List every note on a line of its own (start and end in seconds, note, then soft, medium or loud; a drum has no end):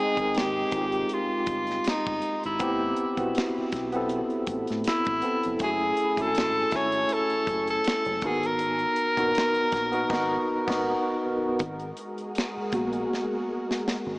0.00 0.14 G#3 medium
0.00 0.14 C4 medium
0.00 0.15 D#4 medium
0.00 0.39 G#4 loud
0.00 0.15 G5 medium
0.17 0.63 G#1 medium
0.17 0.69 G#3 medium
0.17 0.70 C4 medium
0.17 0.70 D#4 medium
0.17 0.71 A#4 medium
0.17 kick medium
0.17 closed hi-hat soft
0.34 1.15 G4 medium
0.34 finger snap medium
0.34 snare loud
0.34 closed hi-hat medium
0.71 1.04 G#1 medium
0.71 2.14 G#3 medium
0.71 2.14 C4 medium
0.71 2.15 D#4 medium
0.71 kick medium
0.71 closed hi-hat medium
0.75 0.81 F4 medium
0.82 2.19 G4 medium
0.92 closed hi-hat soft
1.09 closed hi-hat medium
1.13 1.90 F4 medium
1.46 1.78 G1 medium
1.46 kick medium
1.46 closed hi-hat medium
1.67 snare soft
1.67 closed hi-hat soft
1.84 finger snap medium
1.84 muted fingered electric bass stroke soft
1.84 snare loud
1.84 closed hi-hat medium
1.89 2.45 D#4 medium
2.07 2.20 G1 medium
2.07 kick medium
2.22 closed hi-hat medium
2.43 2.58 G#1 medium
2.43 3.15 E4 medium
2.43 closed hi-hat soft
2.59 2.91 A1 loud
2.59 3.14 B3 medium
2.59 3.15 C4 medium
2.59 3.15 E4 medium
2.59 kick loud
2.59 closed hi-hat medium
2.63 3.16 G4 medium
2.96 closed hi-hat medium
3.17 3.32 B1 medium
3.17 3.88 B3 medium
3.17 3.88 C4 medium
3.17 3.89 E4 medium
3.17 3.89 F#4 medium
3.17 kick medium
3.17 closed hi-hat soft
3.35 finger snap medium
3.35 snare loud
3.35 closed hi-hat medium
3.58 muted fingered electric bass stroke soft
3.72 4.21 B1 medium
3.72 kick medium
3.72 snare soft
3.72 closed hi-hat medium
3.92 5.15 B3 medium
3.92 5.16 C4 medium
3.92 5.17 E4 medium
3.92 closed hi-hat soft
3.97 5.17 A4 medium
4.09 closed hi-hat medium
4.30 closed hi-hat soft
4.47 4.64 A1 medium
4.47 kick medium
4.47 closed hi-hat medium
4.67 4.83 A2 medium
4.67 snare soft
4.67 closed hi-hat soft
4.84 5.57 E4 medium
4.84 finger snap medium
4.84 muted fingered electric bass stroke soft
4.84 snare loud
4.84 closed hi-hat medium
5.05 5.20 A1 medium
5.05 kick medium
5.05 closed hi-hat soft
5.22 5.58 B3 medium
5.22 5.58 C4 medium
5.22 5.59 E4 medium
5.22 5.59 A4 medium
5.22 closed hi-hat medium
5.43 5.59 F1 medium
5.43 closed hi-hat soft
5.59 5.91 F#1 loud
5.59 6.14 A3 medium
5.59 6.15 C#4 medium
5.59 6.16 E4 medium
5.59 6.22 G#4 medium
5.59 kick loud
5.59 closed hi-hat medium
5.64 5.69 F#4 medium
5.71 6.19 G#4 loud
5.97 closed hi-hat medium
6.17 6.63 G#1 medium
6.17 6.69 A3 medium
6.17 6.70 C#4 medium
6.17 6.70 E4 medium
6.17 6.25 F#4 medium
6.17 6.77 A4 loud
6.17 kick medium
6.17 closed hi-hat soft
6.27 6.74 G#5 medium
6.35 finger snap medium
6.35 snare loud
6.35 closed hi-hat medium
6.71 7.04 G#1 medium
6.71 8.14 A3 medium
6.71 8.14 C#4 medium
6.71 8.15 E4 medium
6.71 kick medium
6.71 snare soft
6.71 closed hi-hat medium
6.75 7.15 C#5 loud
6.75 8.16 G#5 medium
6.92 closed hi-hat soft
7.09 closed hi-hat medium
7.13 7.69 A4 medium
7.30 closed hi-hat soft
7.47 7.79 F#1 medium
7.47 kick medium
7.47 closed hi-hat medium
7.67 8.27 A4 medium
7.67 closed hi-hat soft
7.84 finger snap medium
7.84 muted fingered electric bass stroke soft
7.84 snare loud
7.84 closed hi-hat medium
8.05 8.20 F#1 loud
8.05 closed hi-hat soft
8.21 8.85 G#1 loud
8.21 8.29 A#3 medium
8.21 9.12 D#4 medium
8.21 9.13 F#4 medium
8.21 kick loud
8.21 closed hi-hat soft
8.26 9.15 B3 medium
8.26 8.48 G#4 medium
8.26 9.13 A#4 medium
8.43 11.24 A#4 loud
8.43 closed hi-hat medium
8.59 closed hi-hat medium
8.79 closed hi-hat soft
8.96 closed hi-hat medium
9.17 9.32 A#1 medium
9.17 9.88 B3 medium
9.17 9.88 D#4 medium
9.17 9.89 F#4 medium
9.17 kick medium
9.17 closed hi-hat soft
9.22 9.26 A#4 medium
9.28 9.93 A#4 medium
9.35 finger snap medium
9.35 snare loud
9.35 closed hi-hat medium
9.54 muted fingered electric bass stroke soft
9.54 closed hi-hat soft
9.72 10.04 A#1 medium
9.72 kick medium
9.72 snare soft
9.72 closed hi-hat medium
9.92 10.08 B3 medium
9.92 10.10 D#4 medium
9.92 10.10 F#4 medium
9.92 10.11 A#4 medium
9.92 closed hi-hat soft
10.10 10.36 G#1 loud
10.10 10.36 B3 medium
10.10 10.36 D#4 medium
10.10 10.37 F#4 medium
10.10 kick loud
10.10 snare medium
10.10 crash medium
10.14 10.38 A#4 loud
10.67 10.93 G#1 loud
10.67 10.92 B3 loud
10.67 10.93 D#4 medium
10.67 10.94 F#4 medium
10.67 10.95 A#4 medium
10.67 kick medium
10.67 snare medium
10.67 crash medium
11.59 11.91 G#1 loud
11.59 14.19 G#3 medium
11.59 14.19 F#4 medium
11.59 14.19 G#4 medium
11.59 14.19 A#4 medium
11.59 kick loud
11.59 closed hi-hat medium
11.80 closed hi-hat soft
11.97 closed hi-hat medium
12.18 closed hi-hat soft
12.35 finger snap medium
12.35 snare loud
12.35 closed hi-hat medium
12.57 muted fingered electric bass stroke soft
12.72 13.04 A#1 medium
12.72 13.81 A#3 medium
12.72 13.82 B3 soft
12.72 13.82 F#4 medium
12.72 kick medium
12.72 closed hi-hat medium
12.93 closed hi-hat soft
13.13 snare medium
13.71 snare medium
13.88 snare medium
14.06 14.19 G#1 medium